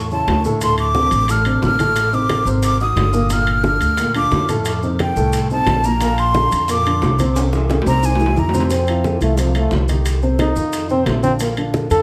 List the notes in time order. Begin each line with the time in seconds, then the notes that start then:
Already playing: E2
0.11 C#3 C#4 E4 A5, high conga, maracas
0.28 D2, high bongo, low bongo, high conga, high timbale, low timbale, maracas
0.44 A2 A3 A4, high bongo, high conga, maracas
0.61 A2 A3 A4 C6, high bongo, high conga, high timbale, maracas
0.78 D6, high conga, high timbale, maracas
0.95 C3 C4 D4, high bongo, high conga, low timbale, maracas
1.11 A1, high bongo, high conga, high timbale, maracas
1.28 A2 A3 A4 F6, high bongo, high conga, high timbale, maracas
1.45 C3 C4 D4, high bongo, high conga, high timbale, maracas
1.62 A1 F6, high bongo, low bongo, high conga, low timbale, maracas
1.79 A2 A3 A4, high bongo, high conga, high timbale, maracas
1.96 high bongo, high conga, high timbale, maracas
2.13 C3 C4 D#4 D6, high bongo, high conga, maracas
2.29 high bongo, high conga, high timbale, low timbale, maracas
2.45 G#1 C3 C4 C5, high bongo, high conga, maracas
2.63 D6, high bongo, high conga, high timbale, maracas
2.80 D#3 D#4 F#4 D#6, high conga, maracas
2.96 G1, high bongo, low bongo, high conga, high timbale, low timbale, maracas
3.13 A#2 A#3 A#4, high bongo, high conga, maracas
3.30 A#2 A#3 A#4 F6, high bongo, high conga, high timbale, maracas
3.47 high conga, high timbale, maracas
3.63 D3 D4 F4 F6, high bongo, high conga, low timbale, maracas
3.81 D2, high bongo, high conga, high timbale, maracas
3.97 A#2 A#3 A#4, high bongo, high conga, high timbale, maracas
4.14 D3 D4 F4 D6, high bongo, high conga, high timbale, maracas
4.31 F2, high bongo, low bongo, high conga, low timbale, maracas
4.49 A2 A3 A4, high bongo, high conga, high timbale, maracas
4.65 high bongo, high conga, high timbale, maracas
4.83 C3 C4 D#4, high bongo, high conga, maracas
4.99 G5, high bongo, high conga, high timbale, low timbale, maracas
5.16 C2 A2 A3 A4, high bongo, high conga, maracas
5.33 high bongo, high conga, high timbale, maracas
5.50 C3 C4 D#4 A5, high conga, maracas
5.66 A#1, high bongo, low bongo, high conga, high timbale, low timbale, maracas
5.84 A#2 A#3 A#4 A#5, high bongo, maracas
6.01 A#2 A#3 A#4, high bongo, high conga, high timbale, maracas
6.18 C6, high conga, high timbale, maracas
6.34 D3 D4 F4, high bongo, high conga, low timbale, maracas
6.51 F2, high bongo, high conga, high timbale, maracas
6.68 A#2 A#3 A#4 D6, high bongo, high conga, high timbale, maracas
6.85 D3 D4 F4, high bongo, high conga, high timbale, maracas
7.02 C2, high bongo, low bongo, high conga, low timbale, maracas
7.19 C3 C4 C5, high bongo, high conga, high timbale, maracas
7.36 high bongo, high conga, high timbale, maracas
7.53 E3 E4 G#4, high bongo, high conga, maracas
7.70 high bongo, high conga, high timbale, maracas
7.82 low timbale
7.86 C2 C3 C4 C5 A#5, low bongo, maracas
7.93 low timbale
8.03 G#5, low bongo, high conga, maracas
8.15 low timbale
8.20 E3 E4 G#4, low bongo, high conga, maracas
8.26 low timbale
8.36 F2 A#5, low bongo, high conga, maracas
8.49 low timbale
8.54 C3 C4 C5, low bongo, high conga, maracas
8.60 low timbale
8.70 C3 C4 C5, high bongo, high conga, high timbale, maracas
8.87 F3 E4 F4, high conga, high timbale, maracas
9.04 high bongo, high conga, low timbale, maracas
9.21 C2 E3 A3 E4 F4, high bongo, high conga, high timbale, maracas
9.37 C3 F3 C4 C5, high bongo, high conga, high timbale, maracas
9.54 F3 A3 E4 F4, high bongo, high conga, high timbale, maracas
9.71 C2, high bongo, low bongo, high conga, low timbale, maracas
9.88 D#3 D#4 G4, high bongo, high conga, high timbale, maracas
10.05 high bongo, high conga, high timbale, maracas
10.22 C3 C4 C5, high bongo, high conga, maracas
10.39 D#4, high bongo, high conga, high timbale, low timbale, maracas
10.56 F2 D#3 D#4 F4, high bongo, high conga, maracas
10.73 high bongo, high conga, high timbale, maracas
10.89 C3 C4 C5, high conga, maracas
11.06 A#1 A3, high bongo, low bongo, high conga, high timbale, low timbale, maracas
11.23 D3 C4 D4 F4, high bongo, high conga, maracas
11.40 A#2 A#3 A#4, high bongo, high conga, high timbale, maracas
11.57 D3 D4 F4, high conga, high timbale, maracas
11.74 high bongo, high conga, low timbale, maracas
11.90 F2 D3 D4 F4 A4, high bongo, high conga, high timbale, maracas